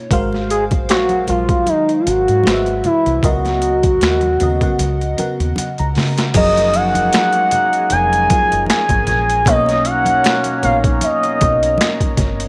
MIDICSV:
0, 0, Header, 1, 8, 480
1, 0, Start_track
1, 0, Key_signature, 6, "major"
1, 0, Tempo, 779221
1, 68, Time_signature, 4, 2, 24, 8
1, 7689, End_track
2, 0, Start_track
2, 0, Title_t, "Soft synth lead"
2, 0, Program_c, 0, 80
2, 311, Note_on_c, 0, 68, 92
2, 397, Note_off_c, 0, 68, 0
2, 551, Note_on_c, 0, 66, 108
2, 773, Note_off_c, 0, 66, 0
2, 794, Note_on_c, 0, 65, 90
2, 1038, Note_on_c, 0, 63, 95
2, 1047, Note_off_c, 0, 65, 0
2, 1232, Note_on_c, 0, 65, 68
2, 1242, Note_off_c, 0, 63, 0
2, 1278, Note_on_c, 0, 66, 103
2, 1288, Note_off_c, 0, 65, 0
2, 1753, Note_off_c, 0, 66, 0
2, 1758, Note_on_c, 0, 64, 96
2, 2000, Note_on_c, 0, 66, 94
2, 2009, Note_off_c, 0, 64, 0
2, 3434, Note_off_c, 0, 66, 0
2, 3923, Note_on_c, 0, 75, 93
2, 4158, Note_on_c, 0, 78, 106
2, 4168, Note_off_c, 0, 75, 0
2, 4873, Note_off_c, 0, 78, 0
2, 4877, Note_on_c, 0, 80, 116
2, 5328, Note_off_c, 0, 80, 0
2, 5356, Note_on_c, 0, 80, 101
2, 5838, Note_on_c, 0, 75, 98
2, 5848, Note_off_c, 0, 80, 0
2, 6071, Note_on_c, 0, 78, 98
2, 6080, Note_off_c, 0, 75, 0
2, 6549, Note_off_c, 0, 78, 0
2, 6555, Note_on_c, 0, 77, 84
2, 6641, Note_off_c, 0, 77, 0
2, 6795, Note_on_c, 0, 75, 83
2, 7487, Note_off_c, 0, 75, 0
2, 7689, End_track
3, 0, Start_track
3, 0, Title_t, "FM electric piano"
3, 0, Program_c, 1, 5
3, 0, Control_c, 1, 64, 127
3, 0, Note_on_c, 1, 47, 78
3, 0, Note_on_c, 1, 58, 68
3, 0, Note_on_c, 1, 61, 51
3, 0, Note_on_c, 1, 63, 62
3, 0, Note_on_c, 1, 65, 72
3, 0, Note_on_c, 1, 73, 80
3, 67, Note_on_c, 1, 56, 92
3, 71, Note_on_c, 1, 66, 85
3, 72, Note_on_c, 1, 70, 82
3, 75, Control_c, 1, 64, 0
3, 76, Note_off_c, 1, 47, 0
3, 76, Note_off_c, 1, 61, 0
3, 78, Note_off_c, 1, 63, 0
3, 79, Note_off_c, 1, 58, 0
3, 79, Note_off_c, 1, 65, 0
3, 79, Note_off_c, 1, 73, 0
3, 80, Note_on_c, 1, 72, 93
3, 81, Note_on_c, 1, 77, 107
3, 179, Control_c, 1, 64, 127
3, 647, Note_off_c, 1, 56, 0
3, 649, Note_off_c, 1, 66, 0
3, 650, Note_off_c, 1, 70, 0
3, 654, Note_off_c, 1, 72, 0
3, 654, Note_off_c, 1, 77, 0
3, 788, Note_on_c, 1, 56, 59
3, 791, Note_on_c, 1, 54, 52
3, 794, Note_on_c, 1, 70, 55
3, 800, Note_on_c, 1, 72, 55
3, 804, Note_on_c, 1, 77, 66
3, 1502, Note_off_c, 1, 56, 0
3, 1509, Note_on_c, 1, 56, 80
3, 1510, Note_off_c, 1, 54, 0
3, 1511, Note_off_c, 1, 70, 0
3, 1513, Note_off_c, 1, 72, 0
3, 1513, Note_on_c, 1, 66, 68
3, 1515, Note_on_c, 1, 71, 70
3, 1516, Note_off_c, 1, 77, 0
3, 1516, Control_c, 1, 64, 0
3, 1520, Note_on_c, 1, 72, 60
3, 1526, Note_on_c, 1, 75, 68
3, 1560, Note_off_c, 1, 75, 0
3, 1563, Note_on_c, 1, 76, 80
3, 1637, Control_c, 1, 64, 127
3, 1900, Note_off_c, 1, 56, 0
3, 1902, Note_off_c, 1, 66, 0
3, 1903, Note_off_c, 1, 71, 0
3, 1905, Note_off_c, 1, 72, 0
3, 1927, Note_off_c, 1, 76, 0
3, 1990, Note_on_c, 1, 49, 77
3, 1992, Note_on_c, 1, 59, 72
3, 1997, Control_c, 1, 64, 0
3, 1998, Note_on_c, 1, 66, 73
3, 1999, Note_on_c, 1, 70, 82
3, 2002, Note_on_c, 1, 75, 94
3, 2121, Control_c, 1, 64, 127
3, 2568, Note_off_c, 1, 49, 0
3, 2569, Note_off_c, 1, 59, 0
3, 2572, Note_off_c, 1, 66, 0
3, 2573, Note_off_c, 1, 70, 0
3, 2574, Note_off_c, 1, 75, 0
3, 2712, Note_on_c, 1, 49, 75
3, 2714, Note_on_c, 1, 59, 61
3, 2719, Note_on_c, 1, 66, 61
3, 2725, Note_on_c, 1, 70, 61
3, 2729, Note_on_c, 1, 75, 82
3, 2813, Note_off_c, 1, 49, 0
3, 2814, Note_off_c, 1, 59, 0
3, 2816, Note_off_c, 1, 66, 0
3, 2819, Note_off_c, 1, 70, 0
3, 2821, Note_off_c, 1, 75, 0
3, 2840, Note_on_c, 1, 49, 78
3, 2845, Note_on_c, 1, 59, 63
3, 2847, Note_on_c, 1, 66, 60
3, 2851, Note_on_c, 1, 70, 62
3, 2853, Note_on_c, 1, 78, 80
3, 3121, Note_off_c, 1, 49, 0
3, 3124, Note_off_c, 1, 59, 0
3, 3125, Note_off_c, 1, 66, 0
3, 3127, Note_off_c, 1, 70, 0
3, 3128, Note_off_c, 1, 78, 0
3, 3187, Note_on_c, 1, 49, 71
3, 3194, Note_on_c, 1, 59, 68
3, 3197, Note_on_c, 1, 66, 65
3, 3198, Note_on_c, 1, 70, 63
3, 3202, Note_on_c, 1, 78, 74
3, 3435, Note_off_c, 1, 78, 0
3, 3443, Note_on_c, 1, 78, 66
3, 3556, Note_off_c, 1, 78, 0
3, 3569, Note_on_c, 1, 82, 62
3, 3767, Note_off_c, 1, 49, 0
3, 3770, Note_off_c, 1, 59, 0
3, 3772, Note_off_c, 1, 66, 0
3, 3772, Note_off_c, 1, 70, 0
3, 3890, Note_off_c, 1, 82, 0
3, 3907, Note_on_c, 1, 54, 98
3, 3910, Note_on_c, 1, 53, 85
3, 3917, Control_c, 1, 64, 0
3, 3918, Note_on_c, 1, 68, 84
3, 3923, Note_on_c, 1, 70, 96
3, 4012, Control_c, 1, 64, 127
3, 4674, Note_off_c, 1, 54, 0
3, 4676, Note_off_c, 1, 53, 0
3, 4679, Note_off_c, 1, 68, 0
3, 4682, Note_off_c, 1, 70, 0
3, 5108, Note_on_c, 1, 54, 61
3, 5113, Note_on_c, 1, 65, 65
3, 5117, Note_on_c, 1, 68, 69
3, 5124, Note_on_c, 1, 70, 75
3, 5688, Note_off_c, 1, 54, 0
3, 5690, Note_off_c, 1, 65, 0
3, 5692, Note_off_c, 1, 68, 0
3, 5695, Note_off_c, 1, 70, 0
3, 5824, Note_on_c, 1, 47, 91
3, 5829, Note_on_c, 1, 58, 92
3, 5833, Note_on_c, 1, 63, 83
3, 5834, Control_c, 1, 64, 0
3, 5839, Note_on_c, 1, 73, 101
3, 5957, Control_c, 1, 64, 127
3, 6405, Note_off_c, 1, 47, 0
3, 6408, Note_off_c, 1, 58, 0
3, 6410, Note_off_c, 1, 63, 0
3, 6413, Note_off_c, 1, 73, 0
3, 6547, Note_on_c, 1, 59, 62
3, 6549, Note_on_c, 1, 70, 56
3, 6555, Note_on_c, 1, 63, 53
3, 6562, Note_on_c, 1, 73, 74
3, 7314, Note_off_c, 1, 59, 0
3, 7315, Note_off_c, 1, 70, 0
3, 7318, Note_off_c, 1, 63, 0
3, 7321, Note_off_c, 1, 73, 0
3, 7689, End_track
4, 0, Start_track
4, 0, Title_t, "Tonewheel organ"
4, 0, Program_c, 2, 16
4, 3906, Note_on_c, 2, 68, 63
4, 3908, Note_on_c, 2, 56, 62
4, 3908, Note_on_c, 2, 70, 67
4, 3909, Note_on_c, 2, 61, 54
4, 5808, Note_off_c, 2, 68, 0
4, 5809, Note_off_c, 2, 56, 0
4, 5809, Note_off_c, 2, 61, 0
4, 5809, Note_off_c, 2, 70, 0
4, 5821, Note_on_c, 2, 63, 71
4, 5823, Note_on_c, 2, 61, 65
4, 5823, Note_on_c, 2, 70, 68
4, 7689, Note_off_c, 2, 61, 0
4, 7689, Note_off_c, 2, 63, 0
4, 7689, Note_off_c, 2, 70, 0
4, 7689, End_track
5, 0, Start_track
5, 0, Title_t, "Trombone section"
5, 0, Program_c, 3, 61
5, 3906, Note_on_c, 3, 56, 63
5, 3907, Note_on_c, 3, 58, 69
5, 3907, Note_on_c, 3, 63, 75
5, 5562, Note_off_c, 3, 56, 0
5, 5563, Note_off_c, 3, 58, 0
5, 5563, Note_off_c, 3, 63, 0
5, 5830, Note_on_c, 3, 54, 70
5, 5830, Note_on_c, 3, 58, 78
5, 5831, Note_on_c, 3, 61, 82
5, 7484, Note_off_c, 3, 54, 0
5, 7484, Note_off_c, 3, 58, 0
5, 7485, Note_off_c, 3, 61, 0
5, 7689, End_track
6, 0, Start_track
6, 0, Title_t, "Fingered electric bass"
6, 0, Program_c, 4, 33
6, 71, Note_on_c, 4, 32, 93
6, 561, Note_off_c, 4, 32, 0
6, 561, Note_on_c, 4, 34, 91
6, 774, Note_off_c, 4, 34, 0
6, 797, Note_on_c, 4, 34, 76
6, 911, Note_off_c, 4, 34, 0
6, 1277, Note_on_c, 4, 32, 79
6, 1391, Note_off_c, 4, 32, 0
6, 1409, Note_on_c, 4, 44, 85
6, 1504, Note_off_c, 4, 44, 0
6, 1518, Note_on_c, 4, 32, 79
6, 1733, Note_off_c, 4, 32, 0
6, 1887, Note_on_c, 4, 36, 72
6, 1984, Note_off_c, 4, 36, 0
6, 1994, Note_on_c, 4, 37, 87
6, 2446, Note_off_c, 4, 37, 0
6, 2475, Note_on_c, 4, 39, 75
6, 2691, Note_off_c, 4, 39, 0
6, 2719, Note_on_c, 4, 39, 71
6, 2832, Note_off_c, 4, 39, 0
6, 2956, Note_on_c, 4, 37, 97
6, 3171, Note_off_c, 4, 37, 0
6, 3326, Note_on_c, 4, 39, 74
6, 3423, Note_off_c, 4, 39, 0
6, 3571, Note_on_c, 4, 37, 79
6, 3666, Note_off_c, 4, 37, 0
6, 3677, Note_on_c, 4, 49, 78
6, 3892, Note_off_c, 4, 49, 0
6, 3914, Note_on_c, 4, 30, 91
6, 4366, Note_off_c, 4, 30, 0
6, 4882, Note_on_c, 4, 29, 98
6, 5095, Note_off_c, 4, 29, 0
6, 5253, Note_on_c, 4, 30, 81
6, 5347, Note_off_c, 4, 30, 0
6, 5483, Note_on_c, 4, 32, 93
6, 5581, Note_off_c, 4, 32, 0
6, 5602, Note_on_c, 4, 34, 88
6, 5833, Note_off_c, 4, 34, 0
6, 5833, Note_on_c, 4, 35, 98
6, 6286, Note_off_c, 4, 35, 0
6, 6557, Note_on_c, 4, 34, 89
6, 6772, Note_off_c, 4, 34, 0
6, 7037, Note_on_c, 4, 35, 102
6, 7252, Note_off_c, 4, 35, 0
6, 7505, Note_on_c, 4, 31, 80
6, 7689, Note_off_c, 4, 31, 0
6, 7689, End_track
7, 0, Start_track
7, 0, Title_t, "Muted fingered electric bass strokes"
7, 3197, Note_on_c, 9, 29, 43
7, 3259, Note_off_c, 9, 29, 0
7, 3436, Note_on_c, 9, 29, 38
7, 3498, Note_off_c, 9, 29, 0
7, 7689, End_track
8, 0, Start_track
8, 0, Title_t, "Drums"
8, 66, Note_on_c, 9, 36, 110
8, 69, Note_on_c, 9, 42, 74
8, 70, Note_on_c, 9, 62, 27
8, 127, Note_off_c, 9, 36, 0
8, 130, Note_off_c, 9, 42, 0
8, 132, Note_off_c, 9, 62, 0
8, 200, Note_on_c, 9, 62, 24
8, 212, Note_on_c, 9, 38, 28
8, 262, Note_off_c, 9, 62, 0
8, 273, Note_off_c, 9, 38, 0
8, 311, Note_on_c, 9, 42, 56
8, 372, Note_off_c, 9, 42, 0
8, 437, Note_on_c, 9, 42, 46
8, 437, Note_on_c, 9, 63, 65
8, 441, Note_on_c, 9, 36, 79
8, 498, Note_off_c, 9, 63, 0
8, 499, Note_off_c, 9, 42, 0
8, 503, Note_off_c, 9, 36, 0
8, 548, Note_on_c, 9, 42, 70
8, 548, Note_on_c, 9, 62, 27
8, 559, Note_on_c, 9, 38, 100
8, 562, Note_on_c, 9, 26, 83
8, 609, Note_off_c, 9, 62, 0
8, 610, Note_off_c, 9, 42, 0
8, 620, Note_off_c, 9, 38, 0
8, 623, Note_off_c, 9, 26, 0
8, 672, Note_on_c, 9, 42, 33
8, 672, Note_on_c, 9, 63, 46
8, 733, Note_off_c, 9, 42, 0
8, 734, Note_off_c, 9, 63, 0
8, 783, Note_on_c, 9, 64, 51
8, 786, Note_on_c, 9, 42, 65
8, 845, Note_off_c, 9, 64, 0
8, 848, Note_off_c, 9, 42, 0
8, 917, Note_on_c, 9, 36, 86
8, 917, Note_on_c, 9, 42, 41
8, 978, Note_off_c, 9, 36, 0
8, 978, Note_off_c, 9, 42, 0
8, 1025, Note_on_c, 9, 62, 22
8, 1025, Note_on_c, 9, 63, 49
8, 1027, Note_on_c, 9, 42, 66
8, 1086, Note_off_c, 9, 62, 0
8, 1086, Note_off_c, 9, 63, 0
8, 1089, Note_off_c, 9, 42, 0
8, 1164, Note_on_c, 9, 42, 33
8, 1225, Note_off_c, 9, 42, 0
8, 1273, Note_on_c, 9, 63, 56
8, 1274, Note_on_c, 9, 42, 66
8, 1335, Note_off_c, 9, 42, 0
8, 1335, Note_off_c, 9, 63, 0
8, 1406, Note_on_c, 9, 42, 45
8, 1467, Note_off_c, 9, 42, 0
8, 1500, Note_on_c, 9, 63, 63
8, 1521, Note_on_c, 9, 38, 100
8, 1521, Note_on_c, 9, 42, 68
8, 1524, Note_on_c, 9, 26, 82
8, 1561, Note_off_c, 9, 63, 0
8, 1582, Note_off_c, 9, 42, 0
8, 1583, Note_off_c, 9, 38, 0
8, 1586, Note_off_c, 9, 26, 0
8, 1640, Note_on_c, 9, 42, 32
8, 1649, Note_on_c, 9, 62, 32
8, 1702, Note_off_c, 9, 42, 0
8, 1711, Note_off_c, 9, 62, 0
8, 1748, Note_on_c, 9, 42, 47
8, 1754, Note_on_c, 9, 64, 61
8, 1810, Note_off_c, 9, 42, 0
8, 1816, Note_off_c, 9, 64, 0
8, 1885, Note_on_c, 9, 42, 40
8, 1947, Note_off_c, 9, 42, 0
8, 1988, Note_on_c, 9, 36, 98
8, 1994, Note_on_c, 9, 42, 78
8, 2050, Note_off_c, 9, 36, 0
8, 2056, Note_off_c, 9, 42, 0
8, 2124, Note_on_c, 9, 62, 26
8, 2128, Note_on_c, 9, 42, 29
8, 2134, Note_on_c, 9, 38, 33
8, 2185, Note_off_c, 9, 62, 0
8, 2190, Note_off_c, 9, 42, 0
8, 2196, Note_off_c, 9, 38, 0
8, 2228, Note_on_c, 9, 42, 60
8, 2290, Note_off_c, 9, 42, 0
8, 2360, Note_on_c, 9, 63, 62
8, 2361, Note_on_c, 9, 42, 47
8, 2364, Note_on_c, 9, 36, 84
8, 2422, Note_off_c, 9, 63, 0
8, 2423, Note_off_c, 9, 42, 0
8, 2425, Note_off_c, 9, 36, 0
8, 2471, Note_on_c, 9, 42, 69
8, 2482, Note_on_c, 9, 38, 101
8, 2485, Note_on_c, 9, 26, 78
8, 2533, Note_off_c, 9, 42, 0
8, 2543, Note_off_c, 9, 38, 0
8, 2546, Note_off_c, 9, 26, 0
8, 2593, Note_on_c, 9, 42, 33
8, 2601, Note_on_c, 9, 63, 45
8, 2655, Note_off_c, 9, 42, 0
8, 2662, Note_off_c, 9, 63, 0
8, 2710, Note_on_c, 9, 42, 65
8, 2716, Note_on_c, 9, 64, 56
8, 2772, Note_off_c, 9, 42, 0
8, 2778, Note_off_c, 9, 64, 0
8, 2840, Note_on_c, 9, 36, 89
8, 2842, Note_on_c, 9, 42, 38
8, 2902, Note_off_c, 9, 36, 0
8, 2904, Note_off_c, 9, 42, 0
8, 2949, Note_on_c, 9, 63, 51
8, 2952, Note_on_c, 9, 42, 72
8, 3011, Note_off_c, 9, 63, 0
8, 3014, Note_off_c, 9, 42, 0
8, 3088, Note_on_c, 9, 42, 30
8, 3094, Note_on_c, 9, 62, 24
8, 3150, Note_off_c, 9, 42, 0
8, 3155, Note_off_c, 9, 62, 0
8, 3191, Note_on_c, 9, 42, 57
8, 3197, Note_on_c, 9, 63, 55
8, 3253, Note_off_c, 9, 42, 0
8, 3259, Note_off_c, 9, 63, 0
8, 3328, Note_on_c, 9, 42, 42
8, 3389, Note_off_c, 9, 42, 0
8, 3424, Note_on_c, 9, 62, 31
8, 3424, Note_on_c, 9, 63, 65
8, 3438, Note_on_c, 9, 42, 72
8, 3486, Note_off_c, 9, 62, 0
8, 3486, Note_off_c, 9, 63, 0
8, 3499, Note_off_c, 9, 42, 0
8, 3562, Note_on_c, 9, 42, 32
8, 3574, Note_on_c, 9, 62, 32
8, 3623, Note_off_c, 9, 42, 0
8, 3636, Note_off_c, 9, 62, 0
8, 3667, Note_on_c, 9, 46, 39
8, 3674, Note_on_c, 9, 64, 57
8, 3682, Note_on_c, 9, 38, 72
8, 3728, Note_off_c, 9, 46, 0
8, 3736, Note_off_c, 9, 64, 0
8, 3744, Note_off_c, 9, 38, 0
8, 3804, Note_on_c, 9, 42, 46
8, 3810, Note_on_c, 9, 38, 85
8, 3866, Note_off_c, 9, 42, 0
8, 3872, Note_off_c, 9, 38, 0
8, 3906, Note_on_c, 9, 49, 95
8, 3908, Note_on_c, 9, 36, 105
8, 3912, Note_on_c, 9, 42, 82
8, 3967, Note_off_c, 9, 49, 0
8, 3970, Note_off_c, 9, 36, 0
8, 3973, Note_off_c, 9, 42, 0
8, 4042, Note_on_c, 9, 62, 25
8, 4050, Note_on_c, 9, 42, 47
8, 4056, Note_on_c, 9, 38, 31
8, 4104, Note_off_c, 9, 62, 0
8, 4111, Note_off_c, 9, 42, 0
8, 4117, Note_off_c, 9, 38, 0
8, 4149, Note_on_c, 9, 42, 75
8, 4211, Note_off_c, 9, 42, 0
8, 4281, Note_on_c, 9, 63, 66
8, 4282, Note_on_c, 9, 42, 54
8, 4343, Note_off_c, 9, 63, 0
8, 4344, Note_off_c, 9, 42, 0
8, 4390, Note_on_c, 9, 42, 85
8, 4400, Note_on_c, 9, 38, 114
8, 4403, Note_on_c, 9, 26, 88
8, 4451, Note_off_c, 9, 42, 0
8, 4462, Note_off_c, 9, 38, 0
8, 4465, Note_off_c, 9, 26, 0
8, 4513, Note_on_c, 9, 42, 50
8, 4574, Note_off_c, 9, 42, 0
8, 4628, Note_on_c, 9, 42, 69
8, 4633, Note_on_c, 9, 64, 51
8, 4690, Note_off_c, 9, 42, 0
8, 4695, Note_off_c, 9, 64, 0
8, 4761, Note_on_c, 9, 42, 43
8, 4823, Note_off_c, 9, 42, 0
8, 4866, Note_on_c, 9, 42, 71
8, 4870, Note_on_c, 9, 63, 63
8, 4927, Note_off_c, 9, 42, 0
8, 4932, Note_off_c, 9, 63, 0
8, 5006, Note_on_c, 9, 42, 47
8, 5068, Note_off_c, 9, 42, 0
8, 5112, Note_on_c, 9, 42, 66
8, 5114, Note_on_c, 9, 36, 90
8, 5115, Note_on_c, 9, 63, 59
8, 5174, Note_off_c, 9, 42, 0
8, 5176, Note_off_c, 9, 36, 0
8, 5176, Note_off_c, 9, 63, 0
8, 5248, Note_on_c, 9, 42, 53
8, 5309, Note_off_c, 9, 42, 0
8, 5337, Note_on_c, 9, 63, 71
8, 5357, Note_on_c, 9, 42, 81
8, 5358, Note_on_c, 9, 38, 116
8, 5361, Note_on_c, 9, 26, 83
8, 5399, Note_off_c, 9, 63, 0
8, 5419, Note_off_c, 9, 42, 0
8, 5420, Note_off_c, 9, 38, 0
8, 5423, Note_off_c, 9, 26, 0
8, 5477, Note_on_c, 9, 36, 79
8, 5477, Note_on_c, 9, 42, 47
8, 5485, Note_on_c, 9, 62, 35
8, 5538, Note_off_c, 9, 42, 0
8, 5539, Note_off_c, 9, 36, 0
8, 5546, Note_off_c, 9, 62, 0
8, 5586, Note_on_c, 9, 42, 57
8, 5587, Note_on_c, 9, 64, 67
8, 5602, Note_on_c, 9, 38, 31
8, 5648, Note_off_c, 9, 42, 0
8, 5649, Note_off_c, 9, 64, 0
8, 5663, Note_off_c, 9, 38, 0
8, 5726, Note_on_c, 9, 42, 47
8, 5788, Note_off_c, 9, 42, 0
8, 5820, Note_on_c, 9, 62, 27
8, 5827, Note_on_c, 9, 36, 108
8, 5833, Note_on_c, 9, 42, 81
8, 5882, Note_off_c, 9, 62, 0
8, 5889, Note_off_c, 9, 36, 0
8, 5895, Note_off_c, 9, 42, 0
8, 5951, Note_on_c, 9, 62, 25
8, 5967, Note_on_c, 9, 42, 46
8, 5973, Note_on_c, 9, 38, 35
8, 6013, Note_off_c, 9, 62, 0
8, 6028, Note_off_c, 9, 42, 0
8, 6034, Note_off_c, 9, 38, 0
8, 6067, Note_on_c, 9, 42, 64
8, 6128, Note_off_c, 9, 42, 0
8, 6193, Note_on_c, 9, 63, 68
8, 6197, Note_on_c, 9, 42, 50
8, 6255, Note_off_c, 9, 63, 0
8, 6258, Note_off_c, 9, 42, 0
8, 6308, Note_on_c, 9, 62, 29
8, 6309, Note_on_c, 9, 42, 71
8, 6320, Note_on_c, 9, 38, 98
8, 6323, Note_on_c, 9, 26, 95
8, 6370, Note_off_c, 9, 62, 0
8, 6371, Note_off_c, 9, 42, 0
8, 6381, Note_off_c, 9, 38, 0
8, 6384, Note_off_c, 9, 26, 0
8, 6431, Note_on_c, 9, 42, 52
8, 6436, Note_on_c, 9, 62, 31
8, 6493, Note_off_c, 9, 42, 0
8, 6497, Note_off_c, 9, 62, 0
8, 6547, Note_on_c, 9, 64, 60
8, 6548, Note_on_c, 9, 42, 71
8, 6609, Note_off_c, 9, 64, 0
8, 6610, Note_off_c, 9, 42, 0
8, 6677, Note_on_c, 9, 36, 95
8, 6678, Note_on_c, 9, 42, 48
8, 6739, Note_off_c, 9, 36, 0
8, 6740, Note_off_c, 9, 42, 0
8, 6783, Note_on_c, 9, 42, 79
8, 6784, Note_on_c, 9, 62, 25
8, 6784, Note_on_c, 9, 63, 58
8, 6845, Note_off_c, 9, 42, 0
8, 6846, Note_off_c, 9, 62, 0
8, 6846, Note_off_c, 9, 63, 0
8, 6920, Note_on_c, 9, 42, 39
8, 6929, Note_on_c, 9, 62, 27
8, 6982, Note_off_c, 9, 42, 0
8, 6991, Note_off_c, 9, 62, 0
8, 7028, Note_on_c, 9, 42, 63
8, 7028, Note_on_c, 9, 63, 61
8, 7032, Note_on_c, 9, 36, 104
8, 7089, Note_off_c, 9, 42, 0
8, 7090, Note_off_c, 9, 63, 0
8, 7093, Note_off_c, 9, 36, 0
8, 7163, Note_on_c, 9, 42, 47
8, 7224, Note_off_c, 9, 42, 0
8, 7254, Note_on_c, 9, 62, 33
8, 7254, Note_on_c, 9, 63, 71
8, 7273, Note_on_c, 9, 42, 85
8, 7274, Note_on_c, 9, 38, 121
8, 7277, Note_on_c, 9, 26, 94
8, 7316, Note_off_c, 9, 62, 0
8, 7316, Note_off_c, 9, 63, 0
8, 7335, Note_off_c, 9, 42, 0
8, 7336, Note_off_c, 9, 38, 0
8, 7339, Note_off_c, 9, 26, 0
8, 7395, Note_on_c, 9, 36, 80
8, 7396, Note_on_c, 9, 42, 48
8, 7456, Note_off_c, 9, 36, 0
8, 7458, Note_off_c, 9, 42, 0
8, 7499, Note_on_c, 9, 36, 81
8, 7499, Note_on_c, 9, 42, 60
8, 7507, Note_on_c, 9, 64, 66
8, 7515, Note_on_c, 9, 38, 32
8, 7561, Note_off_c, 9, 36, 0
8, 7561, Note_off_c, 9, 42, 0
8, 7569, Note_off_c, 9, 64, 0
8, 7576, Note_off_c, 9, 38, 0
8, 7638, Note_on_c, 9, 42, 53
8, 7689, Note_off_c, 9, 42, 0
8, 7689, End_track
0, 0, End_of_file